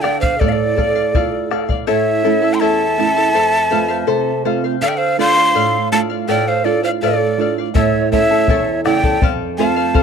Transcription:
Already playing: nylon-string guitar D3
0.01 charango A4 D5 F5, nylon-string guitar A4, pan flute D5, quena G5, bombo rim
0.20 pan flute C5, charango D5 F5, quena F5, bombo low
0.38 nylon-string guitar A2, pan flute A4, charango A4 D5 F5, quena D5, bombo low
0.47 pan flute D5, quena F5
0.52 pan flute A4, quena D5
0.76 charango A4 D5 F5, nylon-string guitar A4, bombo low
0.95 charango D5 F5
1.15 nylon-string guitar F4, charango A4 D5 F5, bombo low
1.51 charango A4 D5 F5, nylon-string guitar A4, bombo rim
1.69 charango D5 F5, bombo low
1.87 nylon-string guitar A2, charango E4 A4 C#5 E5 A5, pan flute C#5, quena E5
2.24 nylon-string guitar A3 C#4 E4, charango E4 A4 E5 A5
2.42 charango E4 A4 A5
2.54 pan flute G5, quena C6
2.60 nylon-string guitar E2, charango E4 A4 C#5 E5 A5, pan flute E5, quena A5
2.98 nylon-string guitar A3 C#4 E4, charango E4 A4 E5 A5
3.16 charango E4 A4 A5
3.35 nylon-string guitar F2, charango A4 C5
3.71 nylon-string guitar A3 C4 F4 B4, charango A4 C5 F5
3.88 charango C5 F5
4.07 nylon-string guitar C3 C5, charango A4 C5
4.45 nylon-string guitar A3 C4 F4 F5, charango A4 C5 F5
4.64 charango C5 F5
4.81 nylon-string guitar D3, charango A4 D5 F5, pan flute D5, quena F5
4.88 pan flute E5, quena G5
4.96 pan flute C5, quena F5
5.17 nylon-string guitar A3 D4 F4, charango A4 D5 F5, pan flute F5, quena C6
5.36 charango D5 F5
5.55 nylon-string guitar A2, charango A4 D5 F5
5.92 nylon-string guitar A3 D4 F4, charango A4 D5 F5, pan flute F5, quena A5
6.10 charango D5 F5
6.28 nylon-string guitar A2, charango A4 D5 F5, pan flute D5, quena G5
6.48 pan flute C5, quena F5
6.64 nylon-string guitar A3 D4 F4, charango A4 D5 F5, pan flute A4, quena D5
6.83 pan flute C5, charango D5 F5, quena F5
7.01 nylon-string guitar A2, pan flute A4, charango A4 D5 F5, quena D5
7.38 nylon-string guitar A3 D4 F4, charango A4 D5 F5
7.58 charango D5 F5
7.74 nylon-string guitar A2, charango E4 A4 C#5 E5 A5, pan flute C#5, quena E5, bombo low
8.12 nylon-string guitar A3 C#4 E4, charango E4 A4 E5 A5, pan flute C#5, quena E5, bombo low
8.31 charango E4 A4 A5
8.48 nylon-string guitar E2, charango E4 A4 C#5 E5 A5, bombo low
8.85 nylon-string guitar C#3 A3 E4, charango E4 A4 E5 A5, pan flute D5, quena G5, bombo rim
9.03 charango E4 A4 A5, bombo low
9.22 nylon-string guitar F2, charango A4 C5 F5, bombo low
9.58 nylon-string guitar A3 C4 F4, charango A4 C5 F5, pan flute F5, quena A5
9.76 charango C5 F5
9.94 nylon-string guitar C3, charango A4 C5 F5, bombo low

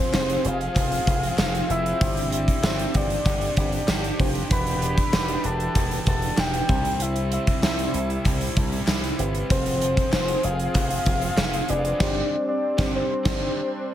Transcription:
Already playing: analog synth pad F3 C4 G#4, synth keys C4 F4 G#4 C5, distorted electric guitar C4 F4, soft synth lead C5
0.12 slap bass F1, synth keys C4 F4 G4 C5, snare, clap, tambourine
0.19 synth keys G#4
0.29 closed hi-hat
0.45 slap bass F1, soft synth lead F5, closed hi-hat
0.61 closed hi-hat
0.74 slap bass F1, distorted electric guitar F3, kick, clap, closed hi-hat
0.78 distorted electric guitar C4 F4
0.92 closed hi-hat
1.07 slap bass F1, kick, closed hi-hat
1.23 closed hi-hat
1.38 slap bass F1, snare, clap, tambourine
1.55 closed hi-hat
1.68 slap bass F1, synth keys C4 F4 G#4 C5, soft synth lead E5, closed hi-hat
1.86 closed hi-hat
2.00 slap bass G1, distorted electric guitar G3 D4 G4, synth keys C4 D4 G4 C5, analog synth pad D4 G4, kick, closed hi-hat
2.17 closed hi-hat
2.31 distorted electric guitar D4 G4, soft synth lead E5, closed hi-hat
2.48 kick, closed hi-hat
2.63 slap bass G1, synth keys C4 D4 G4 C5, snare, clap, tambourine
2.79 closed hi-hat
2.94 slap bass G1, soft synth lead D5, kick, closed hi-hat
3.10 closed hi-hat
3.24 slap bass G1, distorted electric guitar G3 D4, kick, clap, closed hi-hat
3.31 distorted electric guitar G4
3.41 closed hi-hat
3.57 slap bass G1, kick, closed hi-hat
3.72 closed hi-hat
3.88 slap bass G1, snare, clap, tambourine
4.04 closed hi-hat
4.19 slap bass F1, synth keys C4 D4 G4 C5, kick, open hi-hat
4.35 closed hi-hat
4.50 slap bass E1, distorted electric guitar E3 B3 E4, analog synth pad E3, synth keys D4 E4 G4 B4, soft synth lead B5, kick, closed hi-hat
4.67 closed hi-hat
4.81 distorted electric guitar B3 E4, closed hi-hat
4.98 kick, closed hi-hat
5.13 slap bass E1, synth keys D4 E4 F#4 B4, snare, clap, tambourine
5.20 synth keys G4
5.28 closed hi-hat
5.44 slap bass E1, soft synth lead A5, closed hi-hat
5.60 closed hi-hat
5.75 slap bass E1, distorted electric guitar E3 B3 E4, kick, clap, closed hi-hat
5.91 closed hi-hat
6.06 slap bass E1, soft synth lead A5, kick, closed hi-hat
6.22 closed hi-hat
6.38 slap bass E1, soft synth lead G5, snare, clap, tambourine
6.54 closed hi-hat
6.68 slap bass C2, analog synth pad C3 G3 E4, distorted electric guitar C3 G3 C4, synth keys C4 E4 G4 C5, kick, closed hi-hat
6.85 closed hi-hat
7.00 soft synth lead E5, closed hi-hat
7.16 closed hi-hat
7.31 distorted electric guitar G3 C4, soft synth lead E5, closed hi-hat
7.47 kick, closed hi-hat
7.62 slap bass C2, synth keys C4 E4 G4 C5, snare, clap, tambourine
7.79 closed hi-hat
7.94 slap bass C2, closed hi-hat
8.10 closed hi-hat
8.24 slap bass C2, distorted electric guitar C3, kick, clap, closed hi-hat
8.28 distorted electric guitar G3 C4
8.41 closed hi-hat
8.57 slap bass C2, kick, closed hi-hat
8.72 closed hi-hat
8.87 slap bass C2, snare, clap, tambourine
9.04 closed hi-hat
9.18 slap bass G1, synth keys C4 E4 G4 B4, closed hi-hat
9.35 closed hi-hat
9.49 slap bass F1, distorted electric guitar F3 C4 F4, analog synth pad F3 C4 G#4, synth keys C4 F4 G#4 C5, soft synth lead C5, kick, closed hi-hat
9.66 closed hi-hat
9.80 distorted electric guitar C4 F4, closed hi-hat
9.97 kick, closed hi-hat
10.12 slap bass F1, synth keys C4 F4 G#4 C5, snare, clap, tambourine
10.28 closed hi-hat
10.43 slap bass F1, soft synth lead F5, closed hi-hat
10.59 closed hi-hat
10.73 slap bass F1, distorted electric guitar F3 C4, kick, clap, closed hi-hat
10.80 distorted electric guitar F4
10.90 closed hi-hat
11.06 slap bass F1, kick, closed hi-hat
11.22 closed hi-hat
11.37 slap bass F1, snare, clap, tambourine
11.53 closed hi-hat
11.68 slap bass F1, synth keys C4 F4 G#4 B4, soft synth lead D5, closed hi-hat
11.85 closed hi-hat
12.00 slap bass G1, distorted electric guitar G3 D4 G4, analog synth pad G3 C4 D4, synth keys C4 D4 G4 C5, kick, snare, crash
12.48 soft synth lead D5
12.77 slap bass G1, synth keys C4 D4 G4 C5, distorted electric guitar D4 G4, kick, snare
12.96 soft synth lead C5
13.23 slap bass G1, distorted electric guitar G3, synth keys C4 D4 G4 C5, kick, snare, crash
13.28 distorted electric guitar D4 G4

